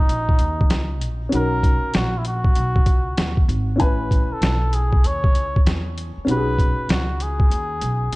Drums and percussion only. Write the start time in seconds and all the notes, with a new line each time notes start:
0.09 closed hi-hat
0.29 kick
0.39 closed hi-hat
0.61 kick
0.70 snare, closed hi-hat
1.01 closed hi-hat
1.32 closed hi-hat
1.63 kick, closed hi-hat
1.94 snare, closed hi-hat
2.25 closed hi-hat
2.44 kick
2.55 closed hi-hat
2.76 kick
2.86 kick, closed hi-hat
3.17 snare, closed hi-hat
3.37 kick
3.49 closed hi-hat
3.80 kick, closed hi-hat
4.11 kick, closed hi-hat
4.42 snare, closed hi-hat
4.73 closed hi-hat
4.93 kick
5.04 closed hi-hat
5.24 kick
5.35 closed hi-hat
5.56 kick
5.67 snare, closed hi-hat
5.98 closed hi-hat
6.28 closed hi-hat
6.59 kick, closed hi-hat
6.89 snare, closed hi-hat
7.20 closed hi-hat
7.40 kick
7.51 closed hi-hat
7.81 closed hi-hat
8.13 closed hi-hat